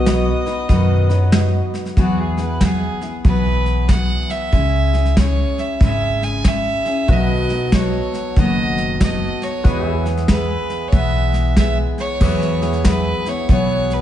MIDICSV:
0, 0, Header, 1, 8, 480
1, 0, Start_track
1, 0, Key_signature, 4, "major"
1, 0, Tempo, 639659
1, 1481, Time_signature, 4, 2, 24, 8
1, 10516, End_track
2, 0, Start_track
2, 0, Title_t, "Fiddle"
2, 0, Program_c, 0, 110
2, 2449, Note_on_c, 0, 71, 86
2, 2894, Note_off_c, 0, 71, 0
2, 2923, Note_on_c, 0, 78, 92
2, 3229, Note_on_c, 0, 76, 97
2, 3241, Note_off_c, 0, 78, 0
2, 3882, Note_off_c, 0, 76, 0
2, 3889, Note_on_c, 0, 73, 85
2, 4197, Note_on_c, 0, 76, 81
2, 4208, Note_off_c, 0, 73, 0
2, 4366, Note_off_c, 0, 76, 0
2, 4377, Note_on_c, 0, 76, 98
2, 4679, Note_on_c, 0, 80, 90
2, 4690, Note_off_c, 0, 76, 0
2, 4861, Note_on_c, 0, 76, 102
2, 4872, Note_off_c, 0, 80, 0
2, 5343, Note_on_c, 0, 75, 103
2, 5355, Note_off_c, 0, 76, 0
2, 5815, Note_on_c, 0, 73, 84
2, 5826, Note_off_c, 0, 75, 0
2, 6289, Note_off_c, 0, 73, 0
2, 6301, Note_on_c, 0, 75, 96
2, 6742, Note_off_c, 0, 75, 0
2, 6780, Note_on_c, 0, 75, 89
2, 7081, Note_on_c, 0, 73, 85
2, 7092, Note_off_c, 0, 75, 0
2, 7556, Note_off_c, 0, 73, 0
2, 7720, Note_on_c, 0, 71, 82
2, 8163, Note_on_c, 0, 73, 76
2, 8175, Note_off_c, 0, 71, 0
2, 8203, Note_on_c, 0, 76, 106
2, 8214, Note_off_c, 0, 73, 0
2, 8685, Note_off_c, 0, 76, 0
2, 8697, Note_on_c, 0, 76, 91
2, 8832, Note_off_c, 0, 76, 0
2, 9005, Note_on_c, 0, 73, 92
2, 9624, Note_off_c, 0, 73, 0
2, 9657, Note_on_c, 0, 71, 84
2, 9969, Note_on_c, 0, 73, 85
2, 9980, Note_off_c, 0, 71, 0
2, 10134, Note_off_c, 0, 73, 0
2, 10139, Note_on_c, 0, 73, 93
2, 10452, Note_on_c, 0, 71, 79
2, 10464, Note_off_c, 0, 73, 0
2, 10516, Note_off_c, 0, 71, 0
2, 10516, End_track
3, 0, Start_track
3, 0, Title_t, "Pedal steel guitar"
3, 0, Program_c, 1, 26
3, 0, Note_on_c, 1, 66, 70
3, 0, Note_on_c, 1, 71, 74
3, 0, Note_on_c, 1, 75, 68
3, 1465, Note_off_c, 1, 66, 0
3, 1467, Note_off_c, 1, 71, 0
3, 1471, Note_off_c, 1, 75, 0
3, 5321, Note_on_c, 1, 66, 69
3, 5327, Note_on_c, 1, 71, 70
3, 5335, Note_on_c, 1, 75, 65
3, 7224, Note_off_c, 1, 66, 0
3, 7227, Note_off_c, 1, 71, 0
3, 7231, Note_off_c, 1, 75, 0
3, 7234, Note_on_c, 1, 66, 69
3, 7244, Note_on_c, 1, 71, 73
3, 7247, Note_on_c, 1, 75, 64
3, 7397, Note_off_c, 1, 75, 0
3, 7397, Note_on_c, 1, 76, 64
3, 7422, Note_off_c, 1, 66, 0
3, 7422, Note_on_c, 1, 68, 69
3, 9143, Note_off_c, 1, 68, 0
3, 9148, Note_off_c, 1, 71, 0
3, 9150, Note_off_c, 1, 76, 0
3, 9166, Note_on_c, 1, 68, 66
3, 9174, Note_on_c, 1, 71, 65
3, 9183, Note_on_c, 1, 76, 65
3, 10516, Note_off_c, 1, 68, 0
3, 10516, Note_off_c, 1, 71, 0
3, 10516, Note_off_c, 1, 76, 0
3, 10516, End_track
4, 0, Start_track
4, 0, Title_t, "Upright piano"
4, 0, Program_c, 2, 0
4, 45, Note_on_c, 2, 66, 70
4, 51, Note_on_c, 2, 71, 65
4, 57, Note_on_c, 2, 75, 76
4, 412, Note_off_c, 2, 66, 0
4, 415, Note_off_c, 2, 71, 0
4, 417, Note_off_c, 2, 75, 0
4, 826, Note_on_c, 2, 66, 76
4, 829, Note_on_c, 2, 71, 65
4, 836, Note_on_c, 2, 73, 74
4, 945, Note_off_c, 2, 66, 0
4, 947, Note_off_c, 2, 71, 0
4, 950, Note_off_c, 2, 73, 0
4, 995, Note_on_c, 2, 66, 86
4, 1000, Note_on_c, 2, 71, 77
4, 1007, Note_on_c, 2, 75, 95
4, 1366, Note_off_c, 2, 66, 0
4, 1368, Note_off_c, 2, 71, 0
4, 1372, Note_off_c, 2, 75, 0
4, 5796, Note_on_c, 2, 66, 68
4, 5799, Note_on_c, 2, 71, 63
4, 5808, Note_on_c, 2, 75, 77
4, 6167, Note_off_c, 2, 66, 0
4, 6169, Note_off_c, 2, 71, 0
4, 6173, Note_off_c, 2, 75, 0
4, 6753, Note_on_c, 2, 66, 70
4, 6757, Note_on_c, 2, 71, 57
4, 6761, Note_on_c, 2, 75, 74
4, 7126, Note_off_c, 2, 66, 0
4, 7128, Note_off_c, 2, 71, 0
4, 7130, Note_off_c, 2, 75, 0
4, 7720, Note_on_c, 2, 68, 72
4, 7724, Note_on_c, 2, 71, 61
4, 7731, Note_on_c, 2, 76, 71
4, 8090, Note_off_c, 2, 68, 0
4, 8093, Note_off_c, 2, 71, 0
4, 8096, Note_off_c, 2, 76, 0
4, 8677, Note_on_c, 2, 68, 68
4, 8683, Note_on_c, 2, 71, 59
4, 8688, Note_on_c, 2, 76, 77
4, 9050, Note_off_c, 2, 68, 0
4, 9053, Note_off_c, 2, 71, 0
4, 9055, Note_off_c, 2, 76, 0
4, 9645, Note_on_c, 2, 68, 69
4, 9645, Note_on_c, 2, 71, 65
4, 9652, Note_on_c, 2, 76, 78
4, 10015, Note_off_c, 2, 68, 0
4, 10015, Note_off_c, 2, 71, 0
4, 10019, Note_off_c, 2, 76, 0
4, 10516, End_track
5, 0, Start_track
5, 0, Title_t, "Fiddle"
5, 0, Program_c, 3, 110
5, 0, Note_on_c, 3, 75, 93
5, 1280, Note_off_c, 3, 75, 0
5, 1492, Note_on_c, 3, 66, 78
5, 1651, Note_on_c, 3, 68, 76
5, 1663, Note_off_c, 3, 66, 0
5, 1801, Note_off_c, 3, 68, 0
5, 1813, Note_on_c, 3, 71, 76
5, 1970, Note_on_c, 3, 68, 89
5, 1981, Note_off_c, 3, 71, 0
5, 2346, Note_off_c, 3, 68, 0
5, 10516, End_track
6, 0, Start_track
6, 0, Title_t, "Steel-string acoustic guitar"
6, 0, Program_c, 4, 25
6, 40, Note_on_c, 4, 54, 67
6, 46, Note_on_c, 4, 59, 57
6, 54, Note_on_c, 4, 63, 65
6, 56, Note_on_c, 4, 71, 64
6, 335, Note_off_c, 4, 71, 0
6, 342, Note_off_c, 4, 63, 0
6, 344, Note_on_c, 4, 71, 54
6, 347, Note_off_c, 4, 54, 0
6, 350, Note_off_c, 4, 59, 0
6, 351, Note_on_c, 4, 63, 50
6, 358, Note_on_c, 4, 59, 42
6, 363, Note_on_c, 4, 54, 41
6, 513, Note_off_c, 4, 54, 0
6, 517, Note_on_c, 4, 47, 85
6, 518, Note_off_c, 4, 59, 0
6, 518, Note_on_c, 4, 51, 83
6, 520, Note_off_c, 4, 63, 0
6, 521, Note_off_c, 4, 71, 0
6, 522, Note_on_c, 4, 54, 84
6, 527, Note_on_c, 4, 59, 89
6, 529, Note_on_c, 4, 63, 94
6, 531, Note_on_c, 4, 71, 88
6, 810, Note_off_c, 4, 71, 0
6, 817, Note_off_c, 4, 63, 0
6, 819, Note_on_c, 4, 71, 56
6, 822, Note_off_c, 4, 59, 0
6, 825, Note_off_c, 4, 47, 0
6, 826, Note_off_c, 4, 51, 0
6, 826, Note_on_c, 4, 63, 54
6, 828, Note_off_c, 4, 54, 0
6, 831, Note_on_c, 4, 59, 50
6, 837, Note_on_c, 4, 54, 48
6, 1473, Note_off_c, 4, 54, 0
6, 1477, Note_off_c, 4, 71, 0
6, 1477, Note_on_c, 4, 52, 78
6, 1479, Note_off_c, 4, 59, 0
6, 1480, Note_off_c, 4, 63, 0
6, 1482, Note_on_c, 4, 54, 81
6, 1488, Note_on_c, 4, 59, 82
6, 1488, Note_on_c, 4, 64, 83
6, 1489, Note_on_c, 4, 68, 91
6, 1770, Note_off_c, 4, 68, 0
6, 1779, Note_on_c, 4, 68, 61
6, 1781, Note_off_c, 4, 64, 0
6, 1784, Note_off_c, 4, 52, 0
6, 1787, Note_off_c, 4, 54, 0
6, 1787, Note_off_c, 4, 59, 0
6, 1790, Note_on_c, 4, 64, 50
6, 1796, Note_on_c, 4, 59, 44
6, 1952, Note_off_c, 4, 59, 0
6, 1955, Note_on_c, 4, 54, 62
6, 1957, Note_off_c, 4, 68, 0
6, 1958, Note_off_c, 4, 64, 0
6, 1961, Note_on_c, 4, 59, 64
6, 1967, Note_on_c, 4, 64, 69
6, 1972, Note_on_c, 4, 68, 73
6, 2250, Note_off_c, 4, 68, 0
6, 2259, Note_on_c, 4, 68, 51
6, 2261, Note_off_c, 4, 64, 0
6, 2263, Note_off_c, 4, 54, 0
6, 2266, Note_off_c, 4, 59, 0
6, 2270, Note_on_c, 4, 64, 41
6, 2282, Note_on_c, 4, 59, 38
6, 2433, Note_off_c, 4, 59, 0
6, 2434, Note_on_c, 4, 52, 69
6, 2437, Note_off_c, 4, 68, 0
6, 2438, Note_off_c, 4, 64, 0
6, 2439, Note_on_c, 4, 54, 69
6, 2442, Note_on_c, 4, 59, 74
6, 2447, Note_on_c, 4, 64, 70
6, 2448, Note_on_c, 4, 68, 82
6, 2904, Note_off_c, 4, 54, 0
6, 2912, Note_off_c, 4, 59, 0
6, 2913, Note_off_c, 4, 64, 0
6, 2913, Note_on_c, 4, 54, 47
6, 2917, Note_off_c, 4, 52, 0
6, 2920, Note_off_c, 4, 68, 0
6, 2921, Note_on_c, 4, 59, 60
6, 2922, Note_on_c, 4, 64, 55
6, 2929, Note_on_c, 4, 68, 51
6, 3391, Note_on_c, 4, 49, 61
6, 3393, Note_off_c, 4, 64, 0
6, 3395, Note_off_c, 4, 54, 0
6, 3397, Note_off_c, 4, 59, 0
6, 3397, Note_off_c, 4, 68, 0
6, 3398, Note_on_c, 4, 56, 75
6, 3400, Note_on_c, 4, 61, 69
6, 3402, Note_on_c, 4, 64, 80
6, 3406, Note_on_c, 4, 68, 76
6, 3692, Note_off_c, 4, 68, 0
6, 3701, Note_off_c, 4, 49, 0
6, 3701, Note_on_c, 4, 68, 50
6, 3703, Note_off_c, 4, 64, 0
6, 3704, Note_off_c, 4, 56, 0
6, 3705, Note_off_c, 4, 61, 0
6, 3712, Note_on_c, 4, 64, 44
6, 3722, Note_on_c, 4, 61, 41
6, 3877, Note_off_c, 4, 61, 0
6, 3877, Note_off_c, 4, 68, 0
6, 3880, Note_off_c, 4, 64, 0
6, 3880, Note_on_c, 4, 56, 58
6, 3886, Note_on_c, 4, 61, 59
6, 3889, Note_on_c, 4, 64, 58
6, 3895, Note_on_c, 4, 68, 72
6, 4347, Note_off_c, 4, 56, 0
6, 4351, Note_on_c, 4, 49, 62
6, 4352, Note_off_c, 4, 61, 0
6, 4352, Note_off_c, 4, 64, 0
6, 4356, Note_on_c, 4, 56, 68
6, 4359, Note_off_c, 4, 68, 0
6, 4361, Note_on_c, 4, 61, 77
6, 4361, Note_on_c, 4, 64, 79
6, 4368, Note_on_c, 4, 68, 76
6, 4825, Note_off_c, 4, 56, 0
6, 4830, Note_off_c, 4, 61, 0
6, 4834, Note_on_c, 4, 56, 49
6, 4836, Note_off_c, 4, 49, 0
6, 4838, Note_off_c, 4, 64, 0
6, 4839, Note_on_c, 4, 61, 54
6, 4844, Note_off_c, 4, 68, 0
6, 4847, Note_on_c, 4, 64, 54
6, 4853, Note_on_c, 4, 68, 52
6, 5126, Note_off_c, 4, 68, 0
6, 5133, Note_off_c, 4, 64, 0
6, 5135, Note_on_c, 4, 68, 44
6, 5142, Note_on_c, 4, 64, 42
6, 5143, Note_off_c, 4, 56, 0
6, 5145, Note_off_c, 4, 61, 0
6, 5153, Note_on_c, 4, 61, 42
6, 5315, Note_off_c, 4, 68, 0
6, 5317, Note_on_c, 4, 47, 67
6, 5318, Note_on_c, 4, 51, 69
6, 5319, Note_off_c, 4, 64, 0
6, 5320, Note_on_c, 4, 54, 73
6, 5322, Note_off_c, 4, 61, 0
6, 5325, Note_on_c, 4, 59, 70
6, 5326, Note_on_c, 4, 69, 79
6, 5327, Note_on_c, 4, 63, 79
6, 5612, Note_off_c, 4, 69, 0
6, 5618, Note_off_c, 4, 63, 0
6, 5621, Note_on_c, 4, 69, 49
6, 5624, Note_off_c, 4, 47, 0
6, 5625, Note_off_c, 4, 51, 0
6, 5626, Note_off_c, 4, 54, 0
6, 5626, Note_off_c, 4, 59, 0
6, 5627, Note_on_c, 4, 63, 52
6, 5635, Note_on_c, 4, 59, 46
6, 5640, Note_on_c, 4, 54, 46
6, 5785, Note_off_c, 4, 54, 0
6, 5792, Note_off_c, 4, 59, 0
6, 5794, Note_on_c, 4, 54, 55
6, 5797, Note_off_c, 4, 63, 0
6, 5798, Note_off_c, 4, 69, 0
6, 5801, Note_on_c, 4, 59, 56
6, 5806, Note_on_c, 4, 63, 62
6, 5813, Note_on_c, 4, 69, 66
6, 6278, Note_off_c, 4, 54, 0
6, 6281, Note_on_c, 4, 47, 74
6, 6284, Note_off_c, 4, 63, 0
6, 6284, Note_on_c, 4, 51, 80
6, 6286, Note_off_c, 4, 69, 0
6, 6286, Note_on_c, 4, 54, 84
6, 6289, Note_off_c, 4, 59, 0
6, 6292, Note_on_c, 4, 59, 75
6, 6292, Note_on_c, 4, 63, 79
6, 6295, Note_on_c, 4, 69, 72
6, 6749, Note_off_c, 4, 54, 0
6, 6758, Note_on_c, 4, 54, 46
6, 6761, Note_off_c, 4, 63, 0
6, 6762, Note_off_c, 4, 47, 0
6, 6762, Note_off_c, 4, 59, 0
6, 6764, Note_off_c, 4, 51, 0
6, 6765, Note_off_c, 4, 69, 0
6, 6765, Note_on_c, 4, 59, 52
6, 6770, Note_on_c, 4, 63, 56
6, 6774, Note_on_c, 4, 69, 59
6, 7235, Note_on_c, 4, 52, 67
6, 7238, Note_off_c, 4, 54, 0
6, 7239, Note_off_c, 4, 59, 0
6, 7241, Note_off_c, 4, 63, 0
6, 7241, Note_on_c, 4, 56, 73
6, 7242, Note_on_c, 4, 59, 69
6, 7244, Note_on_c, 4, 64, 81
6, 7247, Note_off_c, 4, 69, 0
6, 7250, Note_on_c, 4, 68, 77
6, 7533, Note_off_c, 4, 68, 0
6, 7542, Note_on_c, 4, 68, 49
6, 7543, Note_off_c, 4, 64, 0
6, 7545, Note_off_c, 4, 52, 0
6, 7548, Note_off_c, 4, 56, 0
6, 7549, Note_off_c, 4, 59, 0
6, 7552, Note_on_c, 4, 64, 44
6, 7562, Note_on_c, 4, 59, 40
6, 7715, Note_off_c, 4, 59, 0
6, 7717, Note_on_c, 4, 56, 55
6, 7721, Note_off_c, 4, 68, 0
6, 7722, Note_off_c, 4, 64, 0
6, 7724, Note_on_c, 4, 59, 58
6, 7731, Note_on_c, 4, 64, 56
6, 7735, Note_on_c, 4, 68, 59
6, 8194, Note_off_c, 4, 56, 0
6, 8197, Note_off_c, 4, 59, 0
6, 8197, Note_on_c, 4, 52, 81
6, 8202, Note_off_c, 4, 64, 0
6, 8203, Note_on_c, 4, 56, 74
6, 8204, Note_off_c, 4, 68, 0
6, 8206, Note_on_c, 4, 59, 83
6, 8211, Note_on_c, 4, 64, 76
6, 8213, Note_on_c, 4, 68, 81
6, 8667, Note_off_c, 4, 56, 0
6, 8673, Note_off_c, 4, 59, 0
6, 8676, Note_on_c, 4, 56, 50
6, 8682, Note_off_c, 4, 52, 0
6, 8682, Note_on_c, 4, 59, 54
6, 8683, Note_off_c, 4, 64, 0
6, 8688, Note_off_c, 4, 68, 0
6, 8692, Note_on_c, 4, 64, 58
6, 8697, Note_on_c, 4, 68, 54
6, 9158, Note_off_c, 4, 59, 0
6, 9162, Note_off_c, 4, 56, 0
6, 9162, Note_off_c, 4, 64, 0
6, 9163, Note_on_c, 4, 52, 69
6, 9164, Note_off_c, 4, 68, 0
6, 9165, Note_on_c, 4, 54, 69
6, 9167, Note_on_c, 4, 59, 73
6, 9171, Note_on_c, 4, 64, 72
6, 9173, Note_on_c, 4, 68, 73
6, 9459, Note_off_c, 4, 68, 0
6, 9466, Note_off_c, 4, 64, 0
6, 9468, Note_on_c, 4, 68, 52
6, 9471, Note_off_c, 4, 52, 0
6, 9472, Note_off_c, 4, 54, 0
6, 9473, Note_off_c, 4, 59, 0
6, 9475, Note_on_c, 4, 64, 44
6, 9485, Note_on_c, 4, 59, 40
6, 9639, Note_off_c, 4, 59, 0
6, 9642, Note_on_c, 4, 54, 59
6, 9645, Note_off_c, 4, 64, 0
6, 9646, Note_off_c, 4, 68, 0
6, 9648, Note_on_c, 4, 59, 59
6, 9654, Note_on_c, 4, 64, 59
6, 9660, Note_on_c, 4, 68, 66
6, 9939, Note_off_c, 4, 68, 0
6, 9948, Note_on_c, 4, 68, 44
6, 9950, Note_off_c, 4, 64, 0
6, 9951, Note_off_c, 4, 54, 0
6, 9954, Note_off_c, 4, 59, 0
6, 9959, Note_on_c, 4, 64, 41
6, 9965, Note_on_c, 4, 59, 37
6, 10123, Note_off_c, 4, 59, 0
6, 10126, Note_off_c, 4, 64, 0
6, 10126, Note_off_c, 4, 68, 0
6, 10128, Note_on_c, 4, 52, 68
6, 10130, Note_on_c, 4, 54, 77
6, 10132, Note_on_c, 4, 59, 80
6, 10135, Note_on_c, 4, 64, 74
6, 10139, Note_on_c, 4, 68, 86
6, 10516, Note_off_c, 4, 52, 0
6, 10516, Note_off_c, 4, 54, 0
6, 10516, Note_off_c, 4, 59, 0
6, 10516, Note_off_c, 4, 64, 0
6, 10516, Note_off_c, 4, 68, 0
6, 10516, End_track
7, 0, Start_track
7, 0, Title_t, "Upright bass"
7, 0, Program_c, 5, 32
7, 0, Note_on_c, 5, 35, 85
7, 239, Note_off_c, 5, 35, 0
7, 517, Note_on_c, 5, 42, 80
7, 1196, Note_off_c, 5, 42, 0
7, 1479, Note_on_c, 5, 40, 77
7, 2157, Note_off_c, 5, 40, 0
7, 2436, Note_on_c, 5, 35, 74
7, 3116, Note_off_c, 5, 35, 0
7, 3395, Note_on_c, 5, 37, 88
7, 4075, Note_off_c, 5, 37, 0
7, 4358, Note_on_c, 5, 32, 75
7, 5037, Note_off_c, 5, 32, 0
7, 5314, Note_on_c, 5, 35, 86
7, 5995, Note_off_c, 5, 35, 0
7, 6279, Note_on_c, 5, 30, 78
7, 6959, Note_off_c, 5, 30, 0
7, 7240, Note_on_c, 5, 40, 86
7, 7921, Note_off_c, 5, 40, 0
7, 8199, Note_on_c, 5, 35, 76
7, 8881, Note_off_c, 5, 35, 0
7, 9157, Note_on_c, 5, 40, 93
7, 9840, Note_off_c, 5, 40, 0
7, 10121, Note_on_c, 5, 35, 77
7, 10516, Note_off_c, 5, 35, 0
7, 10516, End_track
8, 0, Start_track
8, 0, Title_t, "Drums"
8, 47, Note_on_c, 9, 38, 110
8, 47, Note_on_c, 9, 44, 92
8, 122, Note_off_c, 9, 38, 0
8, 122, Note_off_c, 9, 44, 0
8, 348, Note_on_c, 9, 38, 34
8, 423, Note_off_c, 9, 38, 0
8, 519, Note_on_c, 9, 36, 109
8, 519, Note_on_c, 9, 38, 35
8, 594, Note_off_c, 9, 36, 0
8, 594, Note_off_c, 9, 38, 0
8, 823, Note_on_c, 9, 38, 31
8, 898, Note_off_c, 9, 38, 0
8, 992, Note_on_c, 9, 38, 110
8, 992, Note_on_c, 9, 44, 91
8, 1067, Note_off_c, 9, 38, 0
8, 1067, Note_off_c, 9, 44, 0
8, 1304, Note_on_c, 9, 38, 39
8, 1379, Note_off_c, 9, 38, 0
8, 1391, Note_on_c, 9, 38, 28
8, 1466, Note_off_c, 9, 38, 0
8, 1476, Note_on_c, 9, 38, 31
8, 1477, Note_on_c, 9, 36, 98
8, 1551, Note_off_c, 9, 38, 0
8, 1552, Note_off_c, 9, 36, 0
8, 1783, Note_on_c, 9, 38, 32
8, 1858, Note_off_c, 9, 38, 0
8, 1956, Note_on_c, 9, 36, 79
8, 1956, Note_on_c, 9, 38, 110
8, 1956, Note_on_c, 9, 44, 78
8, 2031, Note_off_c, 9, 36, 0
8, 2031, Note_off_c, 9, 38, 0
8, 2031, Note_off_c, 9, 44, 0
8, 2262, Note_on_c, 9, 38, 33
8, 2337, Note_off_c, 9, 38, 0
8, 2436, Note_on_c, 9, 36, 109
8, 2436, Note_on_c, 9, 38, 34
8, 2511, Note_off_c, 9, 38, 0
8, 2512, Note_off_c, 9, 36, 0
8, 2744, Note_on_c, 9, 38, 29
8, 2819, Note_off_c, 9, 38, 0
8, 2916, Note_on_c, 9, 36, 83
8, 2917, Note_on_c, 9, 38, 101
8, 2917, Note_on_c, 9, 44, 78
8, 2991, Note_off_c, 9, 36, 0
8, 2992, Note_off_c, 9, 38, 0
8, 2992, Note_off_c, 9, 44, 0
8, 3223, Note_on_c, 9, 38, 37
8, 3298, Note_off_c, 9, 38, 0
8, 3396, Note_on_c, 9, 36, 96
8, 3397, Note_on_c, 9, 38, 34
8, 3471, Note_off_c, 9, 36, 0
8, 3472, Note_off_c, 9, 38, 0
8, 3704, Note_on_c, 9, 38, 32
8, 3779, Note_off_c, 9, 38, 0
8, 3793, Note_on_c, 9, 38, 29
8, 3868, Note_off_c, 9, 38, 0
8, 3877, Note_on_c, 9, 36, 77
8, 3877, Note_on_c, 9, 38, 110
8, 3877, Note_on_c, 9, 44, 77
8, 3952, Note_off_c, 9, 36, 0
8, 3953, Note_off_c, 9, 38, 0
8, 3953, Note_off_c, 9, 44, 0
8, 4188, Note_on_c, 9, 38, 32
8, 4263, Note_off_c, 9, 38, 0
8, 4358, Note_on_c, 9, 36, 115
8, 4360, Note_on_c, 9, 38, 36
8, 4433, Note_off_c, 9, 36, 0
8, 4435, Note_off_c, 9, 38, 0
8, 4668, Note_on_c, 9, 38, 31
8, 4743, Note_off_c, 9, 38, 0
8, 4836, Note_on_c, 9, 36, 86
8, 4836, Note_on_c, 9, 38, 105
8, 4836, Note_on_c, 9, 44, 79
8, 4911, Note_off_c, 9, 36, 0
8, 4911, Note_off_c, 9, 38, 0
8, 4911, Note_off_c, 9, 44, 0
8, 5143, Note_on_c, 9, 38, 36
8, 5218, Note_off_c, 9, 38, 0
8, 5312, Note_on_c, 9, 38, 31
8, 5316, Note_on_c, 9, 36, 108
8, 5387, Note_off_c, 9, 38, 0
8, 5391, Note_off_c, 9, 36, 0
8, 5619, Note_on_c, 9, 38, 34
8, 5694, Note_off_c, 9, 38, 0
8, 5794, Note_on_c, 9, 38, 104
8, 5794, Note_on_c, 9, 44, 81
8, 5795, Note_on_c, 9, 36, 78
8, 5869, Note_off_c, 9, 38, 0
8, 5869, Note_off_c, 9, 44, 0
8, 5870, Note_off_c, 9, 36, 0
8, 6105, Note_on_c, 9, 38, 31
8, 6180, Note_off_c, 9, 38, 0
8, 6275, Note_on_c, 9, 38, 34
8, 6277, Note_on_c, 9, 36, 105
8, 6350, Note_off_c, 9, 38, 0
8, 6352, Note_off_c, 9, 36, 0
8, 6583, Note_on_c, 9, 38, 30
8, 6658, Note_off_c, 9, 38, 0
8, 6757, Note_on_c, 9, 36, 83
8, 6758, Note_on_c, 9, 38, 108
8, 6758, Note_on_c, 9, 44, 83
8, 6832, Note_off_c, 9, 36, 0
8, 6833, Note_off_c, 9, 38, 0
8, 6833, Note_off_c, 9, 44, 0
8, 7067, Note_on_c, 9, 38, 38
8, 7142, Note_off_c, 9, 38, 0
8, 7240, Note_on_c, 9, 36, 102
8, 7243, Note_on_c, 9, 38, 32
8, 7315, Note_off_c, 9, 36, 0
8, 7318, Note_off_c, 9, 38, 0
8, 7547, Note_on_c, 9, 38, 32
8, 7622, Note_off_c, 9, 38, 0
8, 7634, Note_on_c, 9, 38, 34
8, 7709, Note_off_c, 9, 38, 0
8, 7715, Note_on_c, 9, 38, 98
8, 7715, Note_on_c, 9, 44, 77
8, 7717, Note_on_c, 9, 36, 80
8, 7790, Note_off_c, 9, 38, 0
8, 7790, Note_off_c, 9, 44, 0
8, 7792, Note_off_c, 9, 36, 0
8, 8026, Note_on_c, 9, 38, 31
8, 8101, Note_off_c, 9, 38, 0
8, 8197, Note_on_c, 9, 38, 34
8, 8198, Note_on_c, 9, 36, 105
8, 8272, Note_off_c, 9, 38, 0
8, 8273, Note_off_c, 9, 36, 0
8, 8503, Note_on_c, 9, 38, 31
8, 8578, Note_off_c, 9, 38, 0
8, 8679, Note_on_c, 9, 36, 79
8, 8679, Note_on_c, 9, 38, 115
8, 8679, Note_on_c, 9, 44, 80
8, 8754, Note_off_c, 9, 36, 0
8, 8754, Note_off_c, 9, 38, 0
8, 8754, Note_off_c, 9, 44, 0
8, 8989, Note_on_c, 9, 38, 36
8, 9065, Note_off_c, 9, 38, 0
8, 9160, Note_on_c, 9, 38, 34
8, 9160, Note_on_c, 9, 49, 88
8, 9161, Note_on_c, 9, 36, 104
8, 9235, Note_off_c, 9, 38, 0
8, 9235, Note_off_c, 9, 49, 0
8, 9236, Note_off_c, 9, 36, 0
8, 9317, Note_on_c, 9, 38, 32
8, 9393, Note_off_c, 9, 38, 0
8, 9467, Note_on_c, 9, 38, 33
8, 9542, Note_off_c, 9, 38, 0
8, 9549, Note_on_c, 9, 38, 36
8, 9624, Note_off_c, 9, 38, 0
8, 9638, Note_on_c, 9, 38, 110
8, 9638, Note_on_c, 9, 44, 85
8, 9640, Note_on_c, 9, 36, 86
8, 9713, Note_off_c, 9, 38, 0
8, 9713, Note_off_c, 9, 44, 0
8, 9715, Note_off_c, 9, 36, 0
8, 9946, Note_on_c, 9, 38, 30
8, 10021, Note_off_c, 9, 38, 0
8, 10122, Note_on_c, 9, 36, 113
8, 10122, Note_on_c, 9, 38, 35
8, 10197, Note_off_c, 9, 36, 0
8, 10197, Note_off_c, 9, 38, 0
8, 10432, Note_on_c, 9, 38, 31
8, 10507, Note_off_c, 9, 38, 0
8, 10516, End_track
0, 0, End_of_file